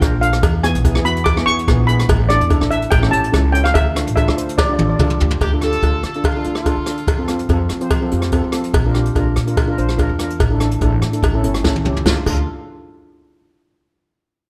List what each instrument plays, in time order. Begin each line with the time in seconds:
Already playing: steel pan G5
0.00 upright bass A#1, steel pan D4 F4 A#4, kick, cross-stick, closed hi-hat, cowbell
0.21 steel pan D4 F4 A4 F5, closed hi-hat
0.33 cross-stick, closed hi-hat
0.43 upright bass E2, kick, closed hi-hat, cowbell
0.63 steel pan B3 E4 G#4 G#5, cross-stick, closed hi-hat
0.75 upright bass B1, closed hi-hat
0.85 steel pan B3 E4 G#4, kick, closed hi-hat, cowbell
0.95 upright bass E2, steel pan B3 E4 G#4, cross-stick
1.05 steel pan B3 E4 F#4 B5, closed hi-hat
1.16 closed hi-hat
1.24 steel pan D6, kick, closed hi-hat, cowbell
1.37 steel pan B3 E4 G#4, cross-stick
1.46 upright bass E2, steel pan B3 E4 G#4 C#6, closed hi-hat
1.59 closed hi-hat
1.67 upright bass A#1, steel pan B3 E4 G#4, kick, cross-stick, closed hi-hat, cowbell
1.87 steel pan B3 E4 G#4 B5, closed hi-hat
1.99 cross-stick, closed hi-hat
2.09 upright bass A1, kick, closed hi-hat, cowbell
2.29 steel pan D4 E4 A4 D5, cross-stick, closed hi-hat
2.41 upright bass E2, closed hi-hat
2.50 steel pan D4 E4 A4, kick, closed hi-hat, cowbell
2.61 upright bass A1, steel pan D4 E4 A4, cross-stick
2.70 steel pan D4 E4 A4 E5, closed hi-hat
2.82 closed hi-hat
2.91 upright bass A1, steel pan G5, kick, closed hi-hat, cowbell
3.01 steel pan C#4 E4 A4, cross-stick
3.11 upright bass A1, steel pan C#4 E4 G4 A5, closed hi-hat
3.24 closed hi-hat
3.32 upright bass C#2, steel pan C#4 E4 A4, kick, cross-stick, closed hi-hat, cowbell
3.52 steel pan C#4 E4 A4 G5, closed hi-hat
3.64 steel pan F5, cross-stick, closed hi-hat
3.74 upright bass D2, steel pan E5, kick, closed hi-hat, cowbell
3.95 steel pan D4 F4 A4, cross-stick, closed hi-hat
4.07 upright bass A1, closed hi-hat
4.16 steel pan D4 F4 A4 E5, kick, closed hi-hat, cowbell
4.28 upright bass D2, steel pan D4 F4 A4, cross-stick
4.37 steel pan D4 F4 C5, closed hi-hat
4.49 closed hi-hat
4.58 steel pan D5, kick, snare, cowbell
4.65 steel pan D4 F4 D5
4.70 steel pan G4 D5
4.79 upright bass A1, steel pan D4 F4 A4 D5, high tom
4.90 steel pan D5
4.96 upright bass C2, steel pan D5, kick, mid tom
5.00 steel pan D4 F4 A4, cowbell
5.04 steel pan D5
5.10 mid tom
5.20 upright bass D2, steel pan D4 F4 G4, floor tom
5.31 floor tom
5.41 upright bass D2, horn section G4, kick, closed hi-hat, cowbell
5.53 steel pan D4 F4 A4
5.61 steel pan D4 F4 G4, horn section A4, cross-stick, closed hi-hat
5.72 closed hi-hat
5.82 upright bass D2, steel pan D4 F4 A4, kick, closed hi-hat, cowbell
6.03 upright bass D3, horn section A4, cross-stick, closed hi-hat
6.14 steel pan D4 F4 A4, closed hi-hat
6.23 horn section F4, kick, closed hi-hat, cowbell
6.36 steel pan D4 F4 A4
6.44 upright bass D2, steel pan D4 F4 A4, closed hi-hat
6.55 horn section F4, cross-stick, closed hi-hat
6.65 steel pan D4 F4 A4, kick, closed hi-hat, cowbell
6.77 upright bass D3
6.86 steel pan D4 F4 A4, cross-stick, closed hi-hat
6.97 closed hi-hat
7.07 upright bass F2, kick, closed hi-hat, cowbell
7.18 steel pan C4 F4 A4
7.28 steel pan C4 F4 A4, cross-stick, closed hi-hat
7.39 closed hi-hat
7.49 upright bass F2, steel pan C4 F4 A4, kick, closed hi-hat, cowbell
7.69 upright bass F3, cross-stick, closed hi-hat
7.81 steel pan C4 F4 C5, closed hi-hat
7.91 kick, closed hi-hat, cowbell
8.01 steel pan C4 F4 A4
8.11 upright bass F2, steel pan C4 F4 G4, closed hi-hat
8.22 cross-stick, closed hi-hat
8.32 steel pan C4 F4 A4, kick, closed hi-hat, cowbell
8.44 upright bass F3
8.52 steel pan C4 F4 A4, cross-stick, closed hi-hat
8.64 closed hi-hat
8.74 upright bass A#1, kick, closed hi-hat, cowbell
8.85 steel pan D4 F4 A#4
8.94 steel pan D4 F4 G4, cross-stick, closed hi-hat
9.05 closed hi-hat
9.15 upright bass A#1, steel pan D4 F4 A#4, kick, closed hi-hat, cowbell
9.36 upright bass A#2, cross-stick, closed hi-hat
9.47 steel pan D4 F4 A#4, closed hi-hat
9.57 kick, closed hi-hat, cowbell
9.67 steel pan D4 F4 A#4
9.77 upright bass A#1, steel pan D4 F4 C5, closed hi-hat
9.89 cross-stick, closed hi-hat
9.97 steel pan D4 F4 A#4, kick, closed hi-hat, cowbell
10.09 upright bass E2
10.19 steel pan D4 F4 A#4, cross-stick, closed hi-hat
10.30 closed hi-hat
10.40 upright bass A1, kick, closed hi-hat, cowbell
10.50 steel pan D4 E4 A4
10.60 steel pan D4 E4 A4, cross-stick, closed hi-hat
10.71 closed hi-hat
10.81 upright bass A1, steel pan D4 E4 A4, kick, closed hi-hat, cowbell
11.02 upright bass A2, cross-stick, closed hi-hat
11.12 steel pan D4 E4 A4, closed hi-hat
11.22 upright bass A1, kick, closed hi-hat, cowbell
11.34 steel pan C#4 E4 A4
11.43 upright bass G1, steel pan C#4 E4 A4, closed hi-hat
11.54 cross-stick, closed hi-hat
11.64 upright bass A1, steel pan C#4 E4 A4, kick, snare, cowbell
11.76 high tom
11.85 upright bass C#2, steel pan C#4 E4 G4, mid tom
11.96 floor tom
12.06 upright bass D2, steel pan D4 F4 A4, horn section F4, kick, snare, cowbell
12.26 upright bass D2, steel pan D4 F4 A4, horn section F4, kick, crash, cowbell